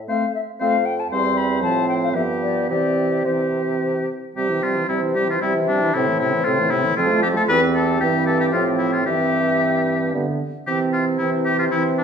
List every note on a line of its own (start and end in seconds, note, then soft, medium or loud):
0.08 0.24 A3 soft
0.08 0.25 C4 soft
0.08 0.25 C5 soft
0.08 0.34 F5 medium
0.35 0.41 E5 medium
0.60 1.03 F2 medium
0.60 0.77 A3 soft
0.60 0.77 C4 soft
0.60 0.76 C5 soft
0.60 0.87 F5 medium
0.85 1.01 G5 medium
1.00 1.11 A5 medium
1.11 1.64 E2 soft
1.11 1.64 G3 soft
1.11 1.59 C4 medium
1.11 1.59 C5 soft
1.11 1.39 C6 medium
1.37 1.62 B5 medium
1.62 2.16 A2 medium
1.62 2.14 F3 medium
1.62 2.16 C4 soft
1.62 2.16 C5 soft
1.62 1.88 A5 medium
1.89 1.95 G5 medium
2.04 2.09 F5 medium
2.15 2.70 G2 soft
2.15 2.71 F3 soft
2.15 2.71 B3 soft
2.15 2.69 G4 soft
2.15 2.22 E5 medium
2.42 2.69 D5 medium
2.70 4.06 C3 soft
2.70 3.25 E3 soft
2.70 3.25 C4 soft
2.70 3.24 G4 soft
2.70 3.27 D5 medium
3.25 4.07 E3 soft
3.25 4.07 C4 soft
3.25 4.07 G4 soft
3.25 4.09 C5 soft
4.36 4.83 C3 soft
4.36 4.51 G3 soft
4.36 4.50 C4 soft
4.36 4.64 G4 medium
4.49 4.64 E3 soft
4.49 4.63 E4 soft
4.62 4.77 G3 soft
4.62 4.77 C4 soft
4.62 4.88 F4 medium
4.75 4.87 E3 soft
4.75 4.88 E4 soft
4.88 5.36 C3 medium
4.88 5.03 G3 soft
4.88 5.03 C4 soft
4.88 5.01 E4 medium
4.88 5.44 C5 soft
5.02 5.16 E3 soft
5.02 5.16 E4 soft
5.15 5.30 G3 soft
5.15 5.29 C4 soft
5.15 5.28 G4 medium
5.27 5.41 E3 soft
5.27 5.41 E4 soft
5.27 5.41 F4 medium
5.41 5.89 C3 medium
5.41 5.56 G3 soft
5.41 5.56 C4 soft
5.41 5.54 E4 medium
5.41 5.94 E5 medium
5.54 5.70 E3 soft
5.54 5.69 E4 soft
5.68 5.83 G3 soft
5.68 5.83 C4 soft
5.68 5.96 D4 medium
5.82 5.94 E3 soft
5.82 5.94 E4 soft
5.94 6.40 A2 medium
5.94 6.09 C3 soft
5.94 6.09 C4 medium
5.94 6.19 E4 medium
5.94 6.96 C5 medium
6.08 6.22 E3 soft
6.08 6.22 A3 soft
6.20 6.34 C3 soft
6.20 6.36 C4 soft
6.20 6.46 E4 medium
6.33 6.45 E3 soft
6.33 6.46 A3 soft
6.45 6.91 A2 medium
6.45 6.60 C3 medium
6.45 6.61 C4 soft
6.45 6.72 F4 medium
6.59 6.73 E3 medium
6.59 6.74 A3 medium
6.71 6.85 C3 soft
6.71 6.87 C4 soft
6.71 6.96 E4 medium
6.84 6.96 E3 soft
6.84 6.98 A3 soft
6.97 7.43 F2 medium
6.97 7.11 F3 medium
6.97 7.13 C4 medium
6.97 7.22 F4 medium
6.97 7.50 A4 medium
7.09 7.24 A3 medium
7.09 7.26 F4 soft
7.22 7.36 F3 medium
7.22 7.38 C4 medium
7.22 7.28 G4 medium
7.35 7.47 A3 soft
7.35 7.49 F4 medium
7.35 7.42 A4 medium
7.48 7.97 E2 medium
7.48 7.96 E3 medium
7.48 7.98 C4 medium
7.48 9.05 G4 medium
7.48 7.60 B4 loud
7.75 8.00 A4 medium
8.00 8.52 G2 medium
8.00 8.54 E3 medium
8.00 8.52 C4 soft
8.00 8.26 G4 medium
8.26 8.39 A4 medium
8.40 8.46 G4 medium
8.52 9.08 A2 medium
8.52 9.05 F3 medium
8.52 9.06 C4 medium
8.52 8.64 F4 medium
8.78 8.92 E4 medium
8.93 9.06 F4 medium
9.06 10.13 G2 soft
9.06 10.15 E3 soft
9.06 10.12 C4 soft
9.06 10.12 G4 medium
9.06 10.38 E5 medium
10.14 10.26 G2 soft
10.14 10.41 D3 soft
10.14 10.40 B3 soft
10.67 12.04 C3 medium
10.67 11.16 E3 soft
10.67 11.17 C4 medium
10.67 10.79 G4 medium
10.93 11.05 F4 medium
11.19 11.71 E3 medium
11.19 11.71 C4 soft
11.19 11.31 E4 medium
11.19 12.04 C5 medium
11.45 11.59 G4 medium
11.59 11.65 F4 medium
11.71 12.04 E3 medium
11.71 12.04 C4 medium
11.71 11.83 E4 medium
11.98 12.04 D4 medium